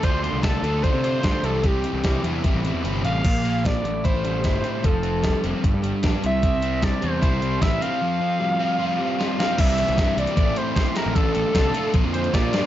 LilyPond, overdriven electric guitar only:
\new Staff \with { instrumentName = "Overdriven electric guitar" } { \time 4/4 \key c \mixolydian \tempo 4 = 152 <d a d' f'>8 <a d' f'>8 <d a d' f'>8 <d a d' f'>8 <d a d' f'>8 <a d' f'>8 <d a d' f'>8 <c e g c' e'>8 | <c e g c' e'>8 <g c' e'>8 <e g c' e'>8 <c e g c' e'>8 <e g c' e'>8 <g c' e'>8 <c e g c' e'>8 <g c' e'>8 | bes,8 bes8 f8 a,8 e'8 g8 e'8 c'8 | f8 c'8 g8 c'8 g,8 g8 d'8 c8 |
c8 c'8 g8 c'8 e'8 g8 e'8 c'8 | f8 c'8 g8 c'8 f'8 g8 f'8 c'8 | <c e g c' e'>4 <c e g c' e'>8 <c e g c' e'>8 <a, e a c' e'>4 <a, e a c' e'>8 <a, e a c' e'>8 | <a, d a d' f'>4 <a, d a d' f'>8 <a, d a d' f'>8 <bes, d f bes f'>4 <bes, d f bes f'>8 <bes, d f bes f'>8 | }